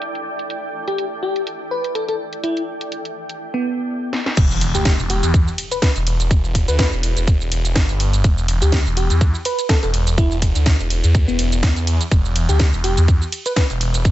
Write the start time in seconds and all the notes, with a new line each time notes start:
Already playing: E4 A4 D5 G5
0.02 closed hi-hat
0.15 closed hi-hat
0.39 closed hi-hat
0.50 closed hi-hat
0.88 G4, closed hi-hat
0.98 closed hi-hat
1.23 G4
1.36 closed hi-hat
1.47 closed hi-hat
1.71 B4
1.84 closed hi-hat
1.95 A4, closed hi-hat
2.08 A4, closed hi-hat
2.33 closed hi-hat
2.44 E4, closed hi-hat
2.57 closed hi-hat
2.81 closed hi-hat
2.92 closed hi-hat
3.05 closed hi-hat
3.29 closed hi-hat
3.54 B3
4.13 snare
4.26 snare
4.37 E1, kick, closed hi-hat, crash, ride, impact, shaker
4.51 shaker
4.61 open hi-hat, ride
4.75 D2 G4, closed hi-hat, shaker
4.85 kick, snare, closed hi-hat, ride, shaker
4.99 E1, shaker
5.10 G4, open hi-hat, ride
5.23 E2, closed hi-hat, shaker
5.34 kick, closed hi-hat, ride, shaker
5.48 shaker
5.58 open hi-hat, ride
5.71 B4, closed hi-hat, shaker
5.82 B4, kick, snare, closed hi-hat, ride, shaker
5.96 E1, closed hi-hat, shaker
6.07 open hi-hat, ride
6.20 closed hi-hat, shaker
6.31 E1, kick, closed hi-hat, ride, shaker
6.45 shaker
6.55 kick, open hi-hat, ride
6.68 D2 B4, closed hi-hat, shaker
6.79 B4, kick, snare, closed hi-hat, ride, shaker
6.92 E1, shaker
7.03 open hi-hat, ride
7.17 E1, closed hi-hat, shaker
7.27 kick, closed hi-hat, ride, shaker
7.41 shaker
7.52 E1, open hi-hat, ride
7.65 closed hi-hat, shaker
7.75 G1, kick, snare, closed hi-hat, ride, shaker
7.89 closed hi-hat, shaker
8.00 open hi-hat, ride
8.13 closed hi-hat, shaker
8.24 E1, kick, closed hi-hat, ride, shaker
8.38 shaker
8.48 open hi-hat, ride
8.62 D2 G4, closed hi-hat, shaker
8.72 kick, snare, closed hi-hat, ride, shaker
8.86 E1, shaker
8.97 G4, open hi-hat, ride
9.10 E2, closed hi-hat, shaker
9.21 kick, closed hi-hat, ride, shaker
9.35 shaker
9.45 B4, open hi-hat, ride
9.59 closed hi-hat, shaker
9.69 A4, kick, snare, closed hi-hat, ride, shaker
9.83 E1 A4, closed hi-hat, shaker
9.94 open hi-hat, ride
10.07 closed hi-hat, shaker
10.18 E1 E4, kick, closed hi-hat, ride, shaker
10.31 shaker
10.42 kick, open hi-hat, ride
10.55 D2, closed hi-hat, shaker
10.66 kick, snare, closed hi-hat, ride, shaker
10.80 E1, shaker
10.90 open hi-hat, ride
11.04 E2, closed hi-hat, shaker
11.15 kick, closed hi-hat, ride, shaker
11.28 E1 B3, shaker
11.39 E1, open hi-hat, ride
11.52 closed hi-hat, shaker
11.63 E2, kick, snare, closed hi-hat, ride, shaker
11.76 closed hi-hat, shaker
11.87 open hi-hat, ride
12.01 closed hi-hat, shaker
12.12 E1, kick, closed hi-hat, ride, shaker
12.25 shaker
12.36 open hi-hat, ride
12.49 D2 G4, closed hi-hat, shaker
12.60 kick, snare, closed hi-hat, ride, shaker
12.73 E1, shaker
12.84 G4, open hi-hat, ride
12.97 E2, closed hi-hat, shaker
13.08 kick, closed hi-hat, ride, shaker
13.22 shaker
13.32 open hi-hat, ride
13.46 B4, closed hi-hat, shaker
13.56 B4, kick, snare, closed hi-hat, ride, shaker
13.70 E1, closed hi-hat, shaker
13.81 open hi-hat, ride
13.94 closed hi-hat, shaker
14.05 E1, kick, closed hi-hat, ride, shaker